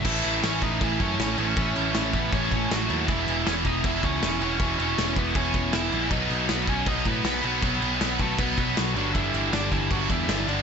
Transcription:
<<
  \new Staff \with { instrumentName = "Lead electric guitar" } { \time 4/4 \key a \lydian \tempo 4 = 158 <e e'>4 <cis' cis''>8 <dis' dis''>8 <e e'>8 <cis' cis''>4 <cis' cis''>8~ | <cis' cis''>4. <b b'>8 <cis' cis''>4 <fis fis'>4 | <e e'>4 <cis' cis''>8 <dis' dis''>8 <e e'>8 <cis' cis''>4 <cis' cis''>8~ | <cis' cis''>8 <cis' cis''>4 <b b'>8 <cis' cis''>4 <e e'>4 |
<dis' dis''>4 <b b'>8 <cis' cis''>8 <dis' dis''>8 <b b'>4 <b b'>8~ | <b b'>4. <a a'>8 <b b'>4 <fis fis'>8 <fis fis'>8 | <e e'>4 <d' d''>8 <e e'>8 <fis fis'>8 <e e'>4 <d' d''>8 | }
  \new Staff \with { instrumentName = "Distorted electric guitar" } { \time 4/4 \key a \lydian <a, e a cis' e'>8 <a, e a cis' e'>8 <a, e a cis' e'>8 <a, e a cis' e'>8 <a, e a cis' e'>8 <a, e a cis' e'>8 <a, e a cis' e'>8 <a, e a cis' e'>8 | <a, e a cis' e'>8 <a, e a cis' e'>8 <a, e a cis' e'>8 <a, e a cis' e'>8 <a, e a cis' e'>8 <a, e a cis' e'>8 <a, e a cis' e'>8 <a, e a cis' e'>8 | <e gis b e'>8 <e gis b e'>8 <e gis b e'>8 <e gis b e'>8 <e gis b e'>8 <e gis b e'>8 <e gis b e'>8 <e gis b e'>8 | <e gis b e'>8 <e gis b e'>8 <e gis b e'>8 <e gis b e'>8 <e gis b e'>8 <e gis b e'>8 <e gis b e'>8 <e gis b e'>8 |
<b, fis b dis'>8 <b, fis b dis'>8 <b, fis b dis'>8 <b, fis b dis'>8 <b, fis b dis'>8 <b, fis b dis'>8 <b, fis b dis'>8 <b, fis b dis'>8 | <b, fis b dis'>8 <b, fis b dis'>8 <b, fis b dis'>8 <b, fis b dis'>8 <b, fis b dis'>8 <b, fis b dis'>8 <b, fis b dis'>8 <g, d g b d'>8 | <g, d g b d'>8 <g, d g b d'>8 <g, d g b d'>8 <g, d g b d'>8 <g, d g b d'>8 <g, d g b d'>8 <g, d g b d'>8 <g, d g b d'>8 | }
  \new Staff \with { instrumentName = "Distorted electric guitar" } { \clef bass \time 4/4 \key a \lydian <a, e a>2.~ <a, e a>8 <a, e a>8 | <a, e a>2.~ <a, e a>8 <a, e a>8 | <e, b, e>2.~ <e, b, e>8 <e, b, e>8 | <e, b, e>2.~ <e, b, e>8 <e, b, e>8 |
<b, fis b>2.~ <b, fis b>8 <b, fis b>8 | <b, fis b>2.~ <b, fis b>8 <g, d g>8~ | <g, d g>2. <g, d g>8 <g, d g>8 | }
  \new Staff \with { instrumentName = "Distorted electric guitar" } { \clef bass \time 4/4 \key a \lydian <a, e a>1 | <a, e a>1 | <e, b, e>1 | <e, b, e>1 |
<b, fis b>1 | <b, fis b>2.~ <b, fis b>8 <g, d g>8~ | <g, d g>2.~ <g, d g>8 <g, d g>8 | }
  \new Staff \with { instrumentName = "Picked electric bass" } { \clef bass \time 4/4 \key a \lydian a,,8 a,,8 a,,8 a,,8 a,,8 fis,8 a,,8 a,,8 | a,,8 a,,8 a,,8 a,,8 a,,8 a,,8 a,,8 dis,8 | e,,8 e,,8 e,,8 e,,8 e,,8 cis,8 e,,8 e,,8 | e,,8 e,,8 e,,8 e,,8 e,,8 e,,8 e,,8 ais,,8 |
b,,8 b,,8 b,,8 b,,8 b,,8 a,8 b,,8 b,,8 | b,,8 b,,8 b,,8 b,,8 b,,8 b,,8 b,,8 g,,8 | g,,8 g,,8 g,,8 g,,8 g,,8 e,8 g,,8 g,,8 | }
  \new DrumStaff \with { instrumentName = "Drums" } \drummode { \time 4/4 <cymc bd>8 cymc8 <cymc sn>8 <cymc bd>8 <cymc bd>8 <cymc bd>8 <cymc sn>8 cymc8 | <cymc bd>8 cymc8 <cymc sn>8 <cymc bd>8 <cymc bd>8 <cymc bd>8 <cymc sn>8 cymc8 | <cymc bd>8 cymc8 <cymc sn>8 <cymc bd>8 <cymc bd>8 <cymc bd>8 <cymc sn>8 cymc8 | <cymc bd>8 cymc8 <cymc sn>8 <cymc bd>8 <cymc bd>8 <cymc bd>8 <cymc sn>8 cymc8 |
<cymc bd>8 cymc8 <cymc sn>8 <cymc bd>8 <cymc bd>8 <cymc bd>8 <cymc sn>8 cymc8 | <cymc bd>8 cymc8 <cymc sn>8 <cymc bd>8 <cymc bd>8 <cymc bd>8 <cymc sn>8 cymc8 | <cymc bd>8 cymc8 <cymc sn>8 <cymc bd>8 <cymc bd>8 <cymc bd>8 <cymc sn>8 cymc8 | }
>>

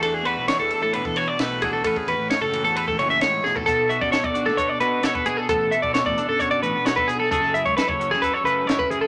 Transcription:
<<
  \new Staff \with { instrumentName = "Clean electric guitar" } { \time 4/4 \key b \dorian \tempo 4 = 132 a'16 gis'16 b'8 cis''16 a'8 a'16 b'16 a'16 cis''16 d''16 b'8 gis'16 a'16 | a'16 gis'16 b'8 cis''16 a'8 a'16 b'16 a'16 cis''16 e''16 cis''8 gis'16 a'16 | a'8 e''16 d''16 cis''16 d''8 a'16 cis''16 d''16 b'8 cis''16 b'16 gis'16 a'16 | a'8 e''16 d''16 cis''16 d''8 a'16 cis''16 d''16 b'8 cis''16 b'16 gis'16 a'16 |
a'8 e''16 cis''16 b'16 cis''8 gis'16 b'16 cis''16 b'8 cis''16 b'16 gis'16 a'16 | }
  \new Staff \with { instrumentName = "Clean electric guitar" } { \time 4/4 \key b \dorian << { <a d' fis'>8 fis'8 d'8 a'8 d'8 fis'8 a8 <a d' fis'>8 | <cis' fis' b'>8 fis'8 cis''8 fis'8 a'8 fis'4. | a'8 fis'16 a'16 a'8 fis'16 a'16 a'8 fis'8 a'8 gis'8 | a'8 a'8 a'8 a'8 a'8 fis'8 fis'16 a'16 gis'8 |
gis'8 e'8 a'8 cis'16 e'16 a'8 a8 e'8 gis'8 | } \\ { e,4 e4 b,4. e,8 | a,4. e4 e8 gis,8 a,8 | b,4. d'4 b,4. | b,4. d'4 b,4. |
fis,4. fis4 cis4. | } >> }
  \new Staff \with { instrumentName = "Fingered electric bass" } { \clef bass \time 4/4 \key b \dorian e,8 e,16 b,,16 r16 e,16 r16 a,8 e8 r16 b,,4 | a,,16 r16 e,16 a,,16 r16 fis,,8 e,8 a,,16 fis,,8 a,,8 b,,8 | b,,8. fis,16 r16 b,,8 b,8 r16 b,8 b,16 r16 b,16 r16 | a,,8 r16 b,,8 a,,16 r16 fis,8. a,,16 r16 b,,16 r16 b,,16 r16 |
fis,,8. cis,16 r16 fis,,8 fis,8 r16 fis,8 fis,16 r16 fis,16 r16 | }
  \new DrumStaff \with { instrumentName = "Drums" } \drummode { \time 4/4 cymr8 cymr8 <cymr sn>8 cymr8 cymr16 bd16 cymr8 <cymr sn>8 <bd cymr>8 | <bd cymr>16 bd16 cymr8 <cymr sn>8 cymr8 cymr16 bd16 cymr8 <cymr sn>8 sn16 bd16 | <hh bd>8 hh16 bd16 <hh sn>16 bd16 hh16 sn16 <hh bd>8 hh8 <hh sn>16 bd16 hh8 | <hh bd>8 hh16 bd16 <hh sn>16 bd16 hh8 <hh bd>8 hh8 <hh sn>16 bd16 hh8 |
<hh bd>8 hh16 bd16 <hh sn>16 bd16 hh16 sn16 <hh bd>8 hh8 <hh sn>16 bd16 hh8 | }
>>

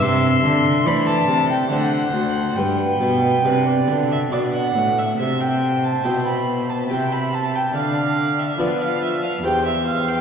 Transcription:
<<
  \new Staff \with { instrumentName = "Violin" } { \time 3/4 \key g \major \tempo 4 = 71 c'''4 b''16 a''8 g''16 fis''4 | g''2 r4 | \key c \major c''2 e''4 | d''4 b'4 c''4 | }
  \new Staff \with { instrumentName = "Violin" } { \time 3/4 \key g \major e''4 d''4 c''4 | b'4 b'16 d''8 e''16 d''16 fis''8 e''16 | \key c \major e''16 g''8 a''16 g''16 b''8 a''16 g''16 b''16 a''16 g''16 | f''8. e''16 d''16 f''16 e''16 f''16 g''16 e''16 f''16 g''16 | }
  \new Staff \with { instrumentName = "Harpsichord" } { \time 3/4 \key g \major r4 <a e' c''>4 <a d' c''>4 | r4 <d' b'>4 <d' b'>4 | \key c \major r4 <e' c''>4 <e' c''>4 | r4 <b d' b'>4 <g' c''>4 | }
  \new Staff \with { instrumentName = "Harpsichord" } { \clef bass \time 3/4 \key g \major c8 d8 e8 c8 d8 d,8 | g,8 b,8 c8 d8 b,8 a,8 | \key c \major c4 b,4 c4 | d4 f4 e,4 | }
  \new Staff \with { instrumentName = "Cello" } { \clef bass \time 3/4 \key g \major c8 d8 e8 c8 d8 d,8 | g,8 b,8 c8 d8 b,8 a,8 | \key c \major c4 b,4 c4 | d4 f4 e,4 | }
>>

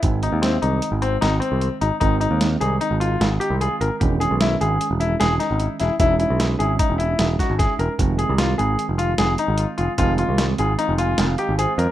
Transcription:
<<
  \new Staff \with { instrumentName = "Grand piano" } { \time 5/4 \key aes \major \tempo 4 = 151 r8 ees'8 c'8 ees'4 c'8 ees'8 c'4 ees'8 | ees'8 ees'4 aes'8 ees'8 f'4 g'8 aes'8 bes'8 | r8 gis'8 e'8 gis'4 e'8 gis'8 ees'4 e'8 | e'8 e'4 gis'8 ees'8 e'4 ges'8 gis'8 bes'8 |
r8 aes'8 f'8 aes'4 f'8 aes'8 ees'4 f'8 | f'8 f'4 aes'8 ees'8 f'4 g'8 aes'8 bes'8 | }
  \new Staff \with { instrumentName = "Tine electric piano" } { \time 5/4 \key aes \major r1 r4 | r1 r4 | r1 r4 | r1 r4 |
r1 r4 | r2 r8 aes''8 f''4 c''4 | }
  \new Staff \with { instrumentName = "Tine electric piano" } { \clef bass \time 5/4 \key aes \major <ees aes c'>1~ <ees aes c'>4 | <ees aes c'>1~ <ees aes c'>4 | <ees gis des'>1~ <ees gis des'>4 | <gis des' ees'>1~ <gis des' ees'>4 |
<ees aes c'>1~ <ees aes c'>4 | <ees aes c'>1~ <ees aes c'>4 | }
  \new Staff \with { instrumentName = "Picked electric bass" } { \clef bass \time 5/4 \key aes \major aes,,8. ees,8. c,8 r16 aes,,8. aes,,8 r16 c,8 r16 aes,,16 r16 | aes,,8. ees,8. c,8 r16 aes,,8. aes,,8 r16 c,8 r16 aes,,16 r16 | e,,8. b,,8. gis,,8 r16 e,,8. e,,8 r16 gis,,8 r16 e,,16 r16 | e,,8. b,,8. gis,,8 r16 e,,8. e,,8 r16 gis,,8 r16 e,,16 r16 |
f,,8. c,8. aes,,8 r16 f,,8. f,,8 r16 aes,,8 r16 f,,16 r16 | f,,8. c,8. aes,,8 r16 f,,8. f,,8 r16 aes,,8 r16 f,16 r16 | }
  \new DrumStaff \with { instrumentName = "Drums" } \drummode { \time 5/4 <hh bd>8 hh8 <hh sn>8 hh8 hh8 hh8 <hh sn>8 hh8 hh8 hh8 | <hh bd>8 hh8 <hh sn>8 hh8 hh8 hh8 <hh sn>8 hh8 hh8 hh8 | <hh bd>8 hh8 <hh sn>8 hh8 hh8 hh8 <hh sn>8 <hh sn>8 hh8 <hh sn>8 | <hh bd>8 hh8 <hh sn>8 hh8 <hh bd>8 hh8 <hh sn>8 <hh bd sn>8 <hh bd sn>8 hh8 |
<hh bd>8 hh8 <hh sn>8 hh8 hh8 hh8 <hh sn>8 hh8 hh8 hh8 | <hh bd>8 hh8 <hh sn>8 hh8 hh8 hh8 <hh sn>8 hh8 hh8 hh8 | }
>>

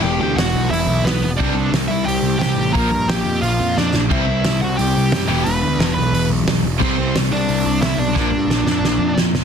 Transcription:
<<
  \new Staff \with { instrumentName = "Lead electric guitar" } { \time 4/4 \key c \lydian \tempo 4 = 178 <g' g''>8 <g' g''>8 <fis' fis''>4 <e' e''>4 <b b'>8. r16 | <d' d''>4 r8 <e' e''>8 <g' g''>4 <g' g''>4 | <bes' bes''>8 <bes' bes''>8 <g' g''>4 <f' f''>4 <d' d''>8. r16 | <e' e''>4. <fis' fis''>8 <g' g''>4. <g' g''>8 |
<b' b''>4. <b' b''>4 r4. | <c' c''>4 r8 <d' d''>4. <e' e''>8 <d' d''>8~ | <d' d''>2. r4 | }
  \new Staff \with { instrumentName = "Overdriven electric guitar" } { \clef bass \time 4/4 \key c \lydian r1 | <c g c'>8 r2. r8 | <bes, f bes>8 r2. r8 | <c g c'>8 r2. <e, b, e>8 |
r1 | <c g c'>8 r2. r8 | <bes, f bes>8 r2. r8 | }
  \new Staff \with { instrumentName = "Overdriven electric guitar" } { \clef bass \time 4/4 \key c \lydian r1 | <c g c'>8 r2. r8 | <bes, f bes>8 r2. r8 | <c g c'>8 r2. <e, b, e>8 |
r1 | <c g c'>8 r2. r8 | <bes, f bes>8 r2. r8 | }
  \new Staff \with { instrumentName = "Distorted electric guitar" } { \clef bass \time 4/4 \key c \lydian <e, b, e>2.~ <e, b, e>8 r8 | <c g c'>1 | <bes, f bes>1 | <c g c'>2.~ <c g c'>8 <e, b, e>8~ |
<e, b, e>2.~ <e, b, e>8 r8 | <c g c'>1 | <bes, f bes>1 | }
  \new Staff \with { instrumentName = "Picked electric bass" } { \clef bass \time 4/4 \key c \lydian e,,8 d,8 e,,8 b,,8 e,,8 b,,8 b,,8 e,,8 | c,8 c,8 c,8 c,8 c,8 c,8 c,8 a,,8 | bes,,8 g,8 bes,,8 f,8 bes,,8 f,8 f,8 bes,,8 | c,8 c,8 c,8 c,8 c,8 c,8 fis,8 e,,8 |
e,,8 d,8 e,,8 b,,8 e,,8 b,,8 b,,8 e,,8 | c,8 c,8 c,8 c,8 c,8 c,8 c,8 b,,8 | bes,,8 g,8 bes,,8 f,8 bes,,8 f,8 f,8 fis,,8 | }
  \new DrumStaff \with { instrumentName = "Drums" } \drummode { \time 4/4 r4 <hho sn>4 hho4 <hho sn>4 | <cymc bd>4 <hho sn>4 hho4 <hho sn>4 | <hho bd>4 <hho sn>4 hho4 sn8 sn8 | <cymc bd>4 <hho sn>4 hho4 <hho sn>4 |
hho4 <hho sn>4 hho4 <hho sn>4 | <cymc bd>4 <hho sn>4 hho4 <hho sn>4 | <bd sn>4 sn8 sn8 sn4 sn8 sn8 | }
>>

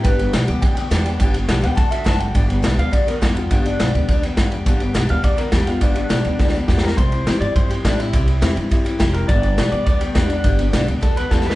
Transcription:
<<
  \new Staff \with { instrumentName = "Clean electric guitar" } { \time 4/4 \key g \major \tempo 4 = 208 b'4 r4 g''8 g''4.~ | g''8 r4 g''8 a''8 e''8 a''8 g''8 | r4. f''8 d''8 bes'8 g'8 f'8 | d'8 d'2 r4. |
r4. f''8 d''8 bes'8 g'8 f'8 | d'8 d'2 r8 g'8 bes'8 | c''4. d''8 c''8 g'8 d'8 e'8~ | e'4. r4. g'8 bes'8 |
d''4. d''8 d''8 g'8 d'8 d'8~ | d'4. r8 a'8 b'8 a'8 b'8 | }
  \new Staff \with { instrumentName = "Steel-string acoustic guitar" } { \time 4/4 \key g \major <g, d g b d' g'>8 <g b d' g'>8 <g, d g b d' g'>8 <g b d' g'>8 <g b d' g'>8 <g b d' g'>8 <g, d g b d' g'>8 <g b d' g'>8 | <g, d g b d' g'>8 <g b d' g'>8 <g, d g b d' g'>8 <g b d' g'>8 <a d' fis' a'>8 <d' fis' a'>8 <d a d' fis' a'>8 <d' fis' a'>8 | <g, d g b d' g'>8 <g b d' g'>8 <g, d g b d' g'>8 <g b d' g'>8 <g b d' g'>8 <g b d' g'>8 <g, d g b d' g'>8 <g b d' g'>8 | <g, d g b d' g'>8 <g b d' g'>8 <g, d g b d' g'>8 <g b d' g'>8 <g b d' g'>8 <g b d' g'>8 <g, d g b d' g'>8 <g b d' g'>8 |
<g, d g b d' g'>8 <g b d' g'>8 <g, d g b d' g'>8 <g b d' g'>8 <g b d' g'>8 <g b d' g'>8 <g, d g b d' g'>8 <g b d' g'>8 | <g, d g b d' g'>8 <g b d' g'>8 <g, d g b d' g'>8 <g b d' g'>8 <g b d' g'>8 <g b d' g'>8 <g, d g b d' g'>8 <g b d' g'>8 | <c g c' e' g'>8 <c' e' g'>8 <c g c' e' g'>8 <c' e' g'>8 <g c' e' g'>8 <c' e' g'>8 <c g c' e' g'>8 <c' e' g'>8 | <c g c' e' g'>8 <c' e' g'>8 <c g c' e' g'>8 <c' e' g'>8 <g c' e' g'>8 <c' e' g'>8 <c g c' e' g'>8 <c' e' g'>8 |
<g, d g b d' g'>8 <g b d' g'>8 <g, d g b d' g'>8 <g b d' g'>8 <g b d' g'>8 <g b d' g'>8 <g, d g b d' g'>8 <g b d' g'>8 | <g, d g b d' g'>8 <g b d' g'>8 <g, d g b d' g'>8 <g b d' g'>8 <g b d' g'>8 <g b d' g'>8 <g, d g b d' g'>8 <g b d' g'>8 | }
  \new Staff \with { instrumentName = "Upright bass" } { \clef bass \time 4/4 \key g \major g,,4 b,,8 d,8 d,4 e,4 | g,,4 b,,8 d,8 d,4 fis,,4 | g,,4 b,,8 d,8 d,4 e,4 | g,,4 b,,8 d,8 d,4 e,4 |
g,,4 b,,8 d,8 d,4 e,4 | g,,4 b,,8 d,8 d,4 e,4 | c,4 e,8 g,8 g,4 a,4 | c,4 e,8 g,8 g,4 f,,4 |
g,,4 b,,8 d,8 d,4 e,4 | g,,4 b,,8 d,8 d,4 e,4 | }
  \new DrumStaff \with { instrumentName = "Drums" } \drummode { \time 4/4 <bd cymr>8 cymr8 <cymr sn>8 cymr8 <bd cymr>8 cymr8 <cymr sn>8 <cymr sn>8 | <bd cymr>8 cymr8 <cymr sn>8 <cymr sn>8 <bd cymr>8 cymr8 <bd cymr sn>8 cymr8 | <bd cymr>8 cymr8 <cymr sn>8 cymr8 <bd cymr>8 cymr8 <bd cymr sn>8 cymr8 | <bd cymr>8 cymr8 <cymr sn>8 cymr8 <bd cymr>8 cymr8 <bd cymr sn>8 cymr8 |
<bd cymr>8 cymr8 <cymr sn>8 cymr8 <bd cymr>8 cymr8 <bd cymr sn>8 <cymr sn>8 | <bd cymr>8 cymr8 <cymr sn>8 cymr8 \tuplet 3/2 { <bd sn>8 sn8 r8 <bd sn>8 sn8 sn8 } | <bd cymr>8 cymr8 <cymr sn>8 cymr8 <bd cymr>8 cymr8 <bd cymr sn>8 <cymr sn>8 | <bd cymr>8 cymr8 <cymr sn>8 cymr8 <bd cymr>8 cymr8 <bd cymr sn>8 <cymr sn>8 |
<bd cymr>8 cymr8 <cymr sn>8 cymr8 <bd cymr>8 cymr8 <bd cymr sn>8 <cymr sn>8 | <bd cymr>8 cymr8 <cymr sn>8 cymr8 <bd cymr>8 cymr8 \tuplet 3/2 { <bd sn>8 sn8 sn8 } | }
>>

